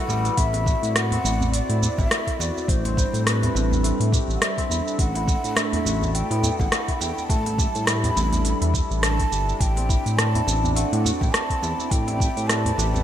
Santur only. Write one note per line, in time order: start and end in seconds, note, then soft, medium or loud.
0.00 0.42 E3 medium
0.00 0.37 A3 loud
0.00 0.25 B3 medium
0.00 1.24 E4 medium
0.00 0.15 F#4 medium
0.00 2.60 A4 loud
0.09 0.42 G3 loud
0.25 1.18 B3 medium
0.37 2.10 A3 medium
0.66 2.39 F#4 medium
1.12 2.84 C4 medium
1.25 1.69 E4 medium
1.69 2.97 E4 medium
2.11 3.83 A3 medium
2.39 4.18 F#4 medium
2.85 4.57 C4 medium
2.97 3.42 E4 medium
3.42 4.70 E4 medium
3.83 5.56 A3 medium
4.12 5.91 G4 medium
4.58 6.37 C4 medium
4.70 5.15 E4 medium
5.15 6.42 E4 medium
5.56 7.29 A3 medium
5.85 7.65 F#4 medium
6.31 8.04 B3 medium
6.43 6.88 E4 medium
6.88 8.16 E4 medium
7.30 9.02 A3 medium
7.59 9.31 G4 medium
8.04 9.83 B3 medium
8.16 8.61 E4 medium
8.62 9.89 E4 medium
9.03 10.75 A3 medium
9.32 11.10 G4 medium
9.77 11.50 C4 medium
9.89 10.34 E4 medium
10.34 11.62 E4 medium
10.76 12.49 A3 medium
11.04 12.84 F#4 medium
11.50 13.03 C4 medium
11.63 12.07 E4 medium
12.08 13.03 E4 medium
12.49 13.03 A3 medium
12.78 13.03 G4 medium